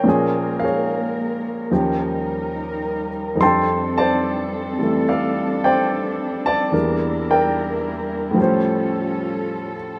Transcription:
Already playing: grand piano C#5 G5
0.04 grand piano A#2 F3 A#3, cello section A#4
0.08 cello section G#3 A#3, grand piano C#4 G#4
0.59 grand piano F5
0.64 grand piano G#4 C#5
1.71 grand piano D#2 D#3 F3 C#4 G4, cello section G3 D#4 A#4
3.36 grand piano F2 F3
3.41 grand piano G3 D4 G5 A5 C6, cello section C4 D4 A4
3.46 grand piano A4
3.98 grand piano C5 D5 A5
4.79 grand piano E3 G3 A3 A4
5.09 grand piano A4 D5 F5
5.64 grand piano C5 D5 G5
6.46 grand piano D5 A5
6.72 grand piano E2 E3 G3 D4 A#4, cello section A#3 E4 A#4
7.31 grand piano A#4 D5 G5
8.31 grand piano A2 F3
8.37 grand piano G3 C#4, cello section C#4 F4 A4
8.42 grand piano C5

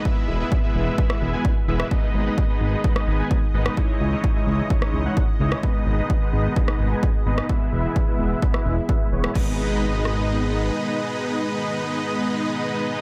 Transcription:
Already playing: analog synth pad G#3
0.05 analog synth pad B2 E3 E4, supersaw synth G#3 B3 E4 B4 E5, kick
0.28 analog synth bass E1
0.40 supersaw synth G#3 B3 E4 B4 E5
0.52 kick
0.63 supersaw synth G#3 B3 E4 B4 E5
0.75 analog synth bass E1
0.98 supersaw synth G#3 B3 E4 B4 E5, kick
1.10 cross-stick
1.21 analog synth bass E1
1.33 supersaw synth G#3 B3 E4 B4 G#5
1.45 kick
1.68 analog synth bass E1, supersaw synth G#3 B3 E4 B4 E5
1.80 cross-stick
1.91 analog synth pad D#3 D#5, supersaw synth G#3 B3 D#4 B4 D#5, kick
2.15 analog synth bass G#1
2.26 supersaw synth G#3 B3 D#4 B4 D#5
2.38 kick
2.49 supersaw synth G#3 B3 D#4 B4 D#5
2.61 analog synth bass G#1
2.84 supersaw synth G#3 B3 D#4 B4 D#5, kick
2.96 cross-stick
3.08 analog synth bass G#1
3.19 supersaw synth G#3 B3 D#4 B4 G#5
3.31 kick
3.54 analog synth bass G#1, supersaw synth G#3 B3 D#4 B4 D#5
3.66 cross-stick
3.77 analog synth pad C#3 E3, supersaw synth G#3 D#4 E4 C#5 D#5, kick
4.01 analog synth bass C#2
4.12 supersaw synth G#3 D#4 E4 C#5 D#5
4.24 kick
4.36 supersaw synth G#3 D#4 E4 C#5 D#5
4.47 analog synth bass C#2
4.70 supersaw synth G#3 D#4 E4 C#5 D#5, kick
4.82 cross-stick
4.94 analog synth bass C#2
5.05 supersaw synth G#3 D#4 E4 C#5 F#5
5.17 kick
5.40 analog synth bass C#2, supersaw synth G#3 D#4 E4 C#5 D#5
5.52 cross-stick
5.63 analog synth pad B2 D#3 G#3, supersaw synth G#3 B3 D#4 B4 D#5, kick
5.87 analog synth bass G#1
5.98 supersaw synth G#3 B3 D#4 B4 D#5
6.10 kick
6.22 supersaw synth G#3 B3 D#4 B4 D#5
6.33 analog synth bass G#1
6.56 supersaw synth G#3 B3 D#4 B4 D#5, kick
6.68 cross-stick
6.80 analog synth bass G#1
6.91 supersaw synth G#3 B3 D#4 B4 G#5
7.03 kick
7.26 analog synth bass G#1, supersaw synth G#3 B3 D#4 B4 D#5
7.38 cross-stick
7.49 analog synth pad B2 E3 E4, supersaw synth G#3 B3 E4 B4 E5, kick
7.73 analog synth bass E1
7.84 supersaw synth G#3 B3 E4 B4 E5
7.96 kick
8.08 supersaw synth G#3 B3 E4 B4 E5
8.19 analog synth bass E1
8.42 supersaw synth G#3 B3 E4 B4 E5, kick
8.54 cross-stick
8.66 analog synth bass E1
8.89 supersaw synth G#3 B3 E4 B4 E5, kick
9.12 analog synth bass E1, supersaw synth G#3 B3 E4 B4 C#5
9.24 cross-stick
9.35 analog synth bass G#1, analog synth pad B2 D#3 G#3 D#4, supersaw synth G#3 B3 D#4 B4 D#5, kick, crash
10.05 cross-stick

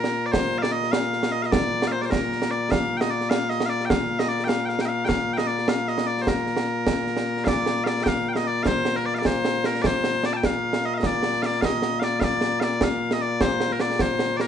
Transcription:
Already playing: bagpipes A#2 A#3 A#4
0.04 snare
0.26 bagpipes D5
0.32 bagpipes C5, concert bass drum, snare
0.58 bagpipes F5
0.62 bagpipes D5, snare
0.72 bagpipes D#5
0.83 snare
0.92 bagpipes F5, snare
1.13 snare
1.23 snare
1.32 bagpipes D#5
1.42 bagpipes D#5 F5, snare
1.52 bagpipes D5, concert bass drum, snare
1.82 snare
1.87 bagpipes F5
1.92 bagpipes C5
2.01 bagpipes C5 D5, snare
2.11 bagpipes A#4, concert bass drum, snare
2.32 snare
2.42 snare
2.51 bagpipes D5
2.71 bagpipes F5, concert bass drum, snare
2.97 bagpipes D#5 G5
3.01 snare
3.11 bagpipes D5
3.21 snare
3.30 bagpipes F5, snare
3.50 bagpipes D#5, snare
3.60 snare
3.66 bagpipes D5 F5
3.81 snare
3.85 bagpipes G5
3.90 bagpipes F5, concert bass drum, snare
4.19 bagpipes D#5, snare
4.29 bagpipes D5
4.40 snare
4.44 bagpipes F5 G5
4.49 snare
4.65 bagpipes F5 G5, snare
4.79 bagpipes G5, snare
4.85 bagpipes D#5 F5
5.05 bagpipes F5 G5
5.09 concert bass drum, snare
5.33 bagpipes G5
5.37 bagpipes D#5, snare
5.47 bagpipes D5
5.58 snare
5.68 bagpipes F5, snare
5.88 bagpipes D#5, snare
5.98 snare
6.07 bagpipes D5
6.18 snare
6.22 bagpipes C5
6.27 bagpipes A#4, concert bass drum, snare
6.47 snare
6.57 snare
6.87 concert bass drum, snare
7.07 snare
7.17 snare
7.37 snare
7.45 bagpipes D5 F5, concert bass drum, snare
7.66 snare
7.84 bagpipes D5 F5, snare
8.03 bagpipes G5, concert bass drum, snare
8.08 bagpipes F5
8.29 bagpipes G5
8.33 bagpipes D#5 F5, snare
8.47 bagpipes D5
8.63 bagpipes C5 F5, concert bass drum, snare
8.85 snare
8.96 bagpipes A#4, snare
9.06 bagpipes D5
9.15 bagpipes F5, snare
9.19 bagpipes D5
9.25 bagpipes C5, concert bass drum, snare
9.45 snare
9.64 bagpipes A#4, snare
9.82 bagpipes D5, concert bass drum, snare
9.86 bagpipes C5
10.04 snare
10.24 bagpipes D5, snare
10.33 bagpipes G5 A5
10.43 bagpipes F5, concert bass drum, snare
10.73 snare
10.85 bagpipes D#5
10.94 bagpipes D#5 F5
11.03 bagpipes D5, concert bass drum, snare
11.23 snare
11.33 snare
11.42 bagpipes D5 F5, snare
11.52 snare
11.61 bagpipes D#5 F5, concert bass drum, snare
11.82 snare
12.00 bagpipes F5, snare
12.04 bagpipes D5
12.20 bagpipes D5 F5, concert bass drum, snare
12.41 snare
12.60 bagpipes D5 F5, snare
12.81 bagpipes F5, concert bass drum, snare
13.11 bagpipes D#5, snare
13.22 bagpipes D5
13.41 bagpipes C5, concert bass drum, snare
13.60 snare
13.70 bagpipes A#4, snare
13.80 bagpipes D5, snare
13.90 snare
13.99 bagpipes C5, concert bass drum, snare
14.19 snare
14.37 bagpipes D5, snare
14.41 bagpipes A#4

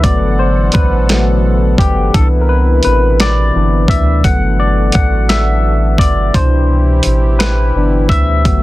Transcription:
Already playing: analog synth pad B2 E3
0.03 analog synth bass G1, analog synth pad D3 A4 F#5, tine electric piano F#3 A3 B3 D5, kick, closed hi-hat
0.39 tine electric piano C5
0.72 analog synth bass A1, tine electric piano B4, kick, closed hi-hat
1.09 tine electric piano F#3 A3 B3, snare, closed hi-hat
1.78 analog synth bass G1, tine electric piano G4, kick, closed hi-hat
2.14 analog synth bass C2, analog synth pad C3 E3 E4 B4, tine electric piano E3 B3 D4 A4, kick, closed hi-hat
2.41 tine electric piano A#4
2.49 tine electric piano B4
2.83 analog synth bass A1, tine electric piano B4, closed hi-hat
3.20 tine electric piano D5, snare, closed hi-hat
3.55 analog synth bass G1, tine electric piano E3 B3 D4
3.88 analog synth bass D2, tine electric piano E5, kick, closed hi-hat
4.24 analog synth bass G1, analog synth pad D3 F#4 A4, tine electric piano F#3 A3 B3 F#5, kick, closed hi-hat
4.60 tine electric piano D5
4.92 analog synth bass A1, tine electric piano F#5, kick, closed hi-hat
5.29 tine electric piano E5, snare, closed hi-hat
5.98 analog synth bass G1, tine electric piano D5, kick, closed hi-hat
6.33 analog synth bass C2, tine electric piano B2 E3 D4 C5, analog synth pad E3 E4 G4, kick, closed hi-hat
7.03 analog synth bass A1, closed hi-hat
7.39 tine electric piano B4, snare, closed hi-hat
7.76 analog synth bass G1, tine electric piano E3 B3 D4
8.09 analog synth bass D2, tine electric piano E5, kick, closed hi-hat
8.45 analog synth bass G1, analog synth pad B2 D3 F#4 A4, tine electric piano F#3 A3 B3, kick, closed hi-hat

